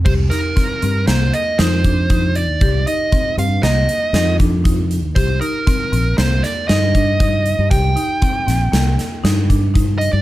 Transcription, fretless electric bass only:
\new Staff \with { instrumentName = "Fretless electric bass" } { \clef bass \time 5/4 \key c \minor \tempo 4 = 118 c,8 r4 g,8 c,8 r8 f,4.~ f,16 ees,16 | c,8 r4 g,8 c,8 r8 f,4.~ f,16 ees,16 | c,8 r4 bes,,8 c,8 r8 g,4.~ g,16 g,16 | c,8 r4 bes,,8 c,8 r8 g,4.~ g,16 g,16 | }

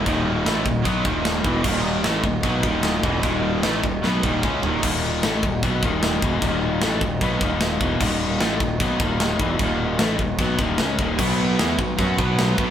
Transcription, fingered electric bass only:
\new Staff \with { instrumentName = "Fingered electric bass" } { \clef bass \time 4/4 \key ees \phrygian \tempo 4 = 151 ees,,4 a,,8 ees,,8 ces,8 ees,,4 fes,,8 | ees,,4 a,,8 ees,,8 ces,8 ees,,4 fes,,8 | ees,,4 a,,8 ees,,8 ces,8 ees,,8 des,8 ees,,8 | ees,,4 a,,8 ees,,8 ces,8 ees,,4 fes,,8 |
ees,,4 a,,8 ees,,8 ces,8 ees,,4 fes,,8 | ees,,4 a,,8 ees,,8 ces,8 ees,,4 fes,,8 | ees,,4 a,,8 ees,,8 ces,8 ees,,8 des,8 ees,,8 | b,,4 fes,8 b,,8 fis,8 b,,4 b,,8 | }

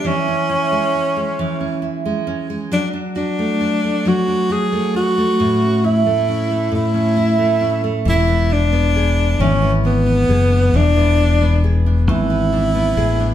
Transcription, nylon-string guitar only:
\new Staff \with { instrumentName = "Nylon-string guitar" } { \time 6/8 \key e \mixolydian \tempo 4. = 45 e16 cis'16 e'16 gis16 cis'16 gis16 e16 cis'16 e'16 gis16 cis'16 gis16 | fis16 d'16 fis'16 a16 d'16 a16 fis16 d'16 fis'16 a16 d'16 a16 | a,16 cis'16 e'16 a16 cis'16 a16 a,16 cis'16 e'16 a16 cis'16 a16 | e16 b16 d'16 b16 gis'8 e16 b16 d'16 b16 gis'16 d'16 |
e16 b16 d'16 b16 gis'16 d'16 e16 b16 d'16 b16 gis'16 d'16 | }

